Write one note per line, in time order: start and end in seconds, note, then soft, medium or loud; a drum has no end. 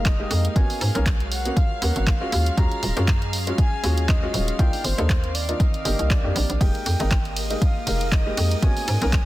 0.00 0.25 F1 medium
0.00 0.16 G#3 medium
0.00 2.28 G#3 medium
0.00 0.16 A#3 medium
0.00 0.54 A#3 medium
0.00 0.16 D#4 medium
0.00 0.54 G4 medium
0.00 0.16 A#4 medium
0.00 0.54 D#5 medium
0.00 0.52 F5 loud
0.00 6.62 F5 medium
0.00 6.62 F6 medium
0.05 0.58 D#5 medium
0.05 kick loud
0.05 clap loud
0.05 closed hi-hat medium
0.19 0.53 G#3 loud
0.19 0.53 A#3 medium
0.19 0.53 D#4 medium
0.19 0.53 G4 loud
0.30 0.48 F2 loud
0.30 open hi-hat loud
0.45 closed hi-hat medium
0.56 0.65 G#1 loud
0.56 0.92 A#3 medium
0.56 0.92 B3 medium
0.56 0.92 C#4 medium
0.56 2.31 F#4 loud
0.56 0.92 F#4 medium
0.56 2.31 A#4 medium
0.56 2.31 C#5 medium
0.56 1.06 G#5 loud
0.56 kick loud
0.56 closed hi-hat medium
0.70 open hi-hat medium
0.81 0.90 G#2 loud
0.81 open hi-hat loud
0.95 1.51 B1 loud
0.95 1.03 A#3 loud
0.95 1.04 B3 medium
0.95 1.04 C#4 medium
0.95 1.04 A#4 loud
0.95 closed hi-hat medium
1.06 kick loud
1.06 clap loud
1.06 closed hi-hat medium
1.20 closed hi-hat soft
1.32 1.58 F#5 medium
1.32 open hi-hat loud
1.45 1.54 A#3 medium
1.45 1.54 B3 medium
1.45 1.54 C#4 medium
1.45 1.54 F#4 medium
1.45 closed hi-hat medium
1.57 1.83 F5 medium
1.57 kick loud
1.57 closed hi-hat medium
1.81 1.91 D#2 medium
1.81 2.18 A#3 medium
1.81 2.18 B3 medium
1.81 2.18 C#4 medium
1.81 2.18 A#4 medium
1.81 2.09 F#5 medium
1.81 open hi-hat loud
1.96 2.26 G#1 medium
1.96 closed hi-hat medium
2.07 2.59 F5 loud
2.07 kick loud
2.07 clap loud
2.07 closed hi-hat medium
2.21 2.55 G#3 loud
2.21 2.55 C#4 medium
2.21 2.55 F4 medium
2.21 2.55 F#4 loud
2.32 2.50 D#2 loud
2.32 4.57 F#3 medium
2.32 4.57 C#4 medium
2.32 4.57 G#4 medium
2.32 4.57 D#5 medium
2.32 8.59 F5 loud
2.32 open hi-hat loud
2.46 closed hi-hat medium
2.57 2.67 D#2 loud
2.57 2.93 G#3 medium
2.57 2.93 C#4 medium
2.57 2.93 F4 medium
2.57 2.93 F#4 medium
2.57 3.33 A#5 loud
2.57 kick loud
2.57 closed hi-hat medium
2.72 closed hi-hat soft
2.83 2.92 D#1 medium
2.83 open hi-hat loud
2.96 3.52 F#2 loud
2.96 3.05 G#3 loud
2.96 3.05 C#4 medium
2.96 3.05 F4 medium
2.96 3.05 F#4 loud
2.96 closed hi-hat medium
3.08 kick loud
3.08 clap loud
3.08 closed hi-hat medium
3.22 closed hi-hat soft
3.33 open hi-hat loud
3.47 3.56 G#3 medium
3.47 3.56 C#4 medium
3.47 3.56 F4 medium
3.47 3.56 F#4 medium
3.47 closed hi-hat medium
3.58 4.10 G#5 loud
3.58 kick loud
3.58 closed hi-hat medium
3.83 4.28 D#2 medium
3.83 4.19 G#3 medium
3.83 4.19 C#4 medium
3.83 4.19 F4 medium
3.83 4.20 F#4 medium
3.83 open hi-hat loud
3.98 closed hi-hat medium
4.09 4.61 D#5 loud
4.09 kick loud
4.09 clap loud
4.09 closed hi-hat medium
4.22 4.56 G#3 loud
4.22 4.56 C#4 medium
4.22 4.57 F4 medium
4.22 4.57 F#4 loud
4.34 4.52 D#1 loud
4.34 open hi-hat loud
4.48 closed hi-hat medium
4.59 4.69 C2 loud
4.59 6.59 D#3 medium
4.59 4.95 A#3 medium
4.59 6.59 C4 medium
4.59 4.95 D4 medium
4.59 4.95 D#4 medium
4.59 4.95 F4 loud
4.59 6.59 A#4 medium
4.59 4.86 G5 loud
4.59 6.59 D6 medium
4.59 kick loud
4.59 closed hi-hat medium
4.73 open hi-hat medium
4.84 4.94 G1 medium
4.84 5.36 C5 loud
4.84 open hi-hat loud
4.98 5.54 D#2 loud
4.98 5.07 A#3 loud
4.98 5.07 D4 medium
4.98 5.07 D#4 medium
4.98 5.07 A4 loud
4.98 closed hi-hat medium
5.09 kick loud
5.09 clap loud
5.09 closed hi-hat medium
5.24 closed hi-hat soft
5.35 5.62 D5 loud
5.35 open hi-hat loud
5.48 5.57 A#3 medium
5.48 5.57 D4 medium
5.48 5.57 D#4 medium
5.48 5.58 F4 medium
5.48 closed hi-hat medium
5.60 6.12 D#5 loud
5.60 kick loud
5.60 closed hi-hat medium
5.74 closed hi-hat soft
5.85 5.95 G1 medium
5.85 6.21 A#3 medium
5.85 6.21 D4 medium
5.85 6.21 D#4 medium
5.85 6.21 G4 loud
5.85 open hi-hat loud
5.99 6.24 C2 medium
5.99 closed hi-hat soft
6.10 6.62 D5 loud
6.10 kick loud
6.10 clap loud
6.10 closed hi-hat medium
6.24 6.32 F2 medium
6.24 6.58 A#3 medium
6.24 6.58 D4 medium
6.24 6.58 D#4 medium
6.24 6.58 G4 medium
6.36 6.45 A#1 loud
6.36 open hi-hat loud
6.49 6.57 A#1 medium
6.49 closed hi-hat medium
6.60 6.70 F1 loud
6.60 6.96 G#3 medium
6.60 9.25 G#3 medium
6.60 6.97 A#3 medium
6.60 8.60 A#3 medium
6.60 6.97 D#4 medium
6.60 8.60 G4 medium
6.60 6.97 G4 medium
6.60 9.25 A#4 medium
6.60 8.60 D#5 medium
6.60 7.36 G5 loud
6.60 9.25 D#6 medium
6.60 kick loud
6.60 closed hi-hat medium
6.60 ride medium
6.75 closed hi-hat soft
6.86 6.95 F2 medium
6.86 open hi-hat loud
6.86 ride medium
7.00 7.56 G#1 loud
7.00 7.08 G#3 loud
7.00 7.09 A#3 medium
7.00 7.09 D#4 medium
7.00 7.09 A#4 loud
7.00 closed hi-hat medium
7.11 kick loud
7.11 clap loud
7.11 closed hi-hat medium
7.11 ride medium
7.25 closed hi-hat soft
7.36 open hi-hat loud
7.36 ride medium
7.50 7.59 G#3 medium
7.50 7.59 A#3 medium
7.50 7.59 D#4 medium
7.50 7.59 G4 medium
7.50 closed hi-hat medium
7.62 8.14 F5 loud
7.62 kick loud
7.62 closed hi-hat medium
7.62 ride medium
7.87 8.31 F1 medium
7.87 8.23 G#3 medium
7.87 8.23 A#3 medium
7.87 8.23 D#4 medium
7.87 8.23 A#4 medium
7.87 open hi-hat loud
7.87 ride medium
8.01 closed hi-hat soft
8.12 8.62 D#5 medium
8.12 kick loud
8.12 clap loud
8.12 closed hi-hat medium
8.12 ride medium
8.26 8.60 G#3 loud
8.26 8.60 A#3 medium
8.26 8.60 D#4 medium
8.26 8.60 G4 loud
8.37 8.55 F2 loud
8.37 open hi-hat loud
8.37 ride medium
8.51 closed hi-hat medium
8.62 8.72 G#1 loud
8.62 8.98 A#3 medium
8.62 8.98 B3 medium
8.62 8.98 C#4 medium
8.62 8.99 F#4 medium
8.62 9.25 A#4 medium
8.62 9.25 C#5 medium
8.62 9.25 F#5 loud
8.62 9.25 G#5 loud
8.62 kick loud
8.62 closed hi-hat medium
8.62 ride medium
8.77 open hi-hat medium
8.88 8.97 G#2 loud
8.88 open hi-hat loud
8.88 ride medium
9.01 9.25 B1 loud
9.01 9.10 A#3 loud
9.01 9.10 B3 medium
9.01 9.10 C#4 medium
9.01 9.10 A#4 loud
9.01 closed hi-hat medium
9.13 kick loud
9.13 clap loud
9.13 closed hi-hat medium
9.13 ride medium